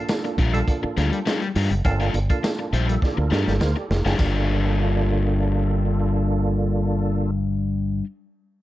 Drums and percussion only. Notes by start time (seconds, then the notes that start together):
0.08 snare, tambourine
0.25 closed hi-hat
0.38 kick, closed hi-hat
0.54 closed hi-hat
0.68 kick, closed hi-hat
0.97 snare, closed hi-hat
1.13 closed hi-hat
1.27 snare, tambourine
1.42 closed hi-hat
1.55 open hi-hat
1.71 closed hi-hat
1.85 kick, closed hi-hat
2.01 closed hi-hat
2.14 closed hi-hat
2.30 kick, closed hi-hat
2.44 snare, tambourine
2.73 closed hi-hat
2.89 closed hi-hat
3.02 kick, snare
3.32 snare
3.48 snare
3.61 snare, tambourine
3.91 snare
4.06 snare
4.19 kick, crash, tambourine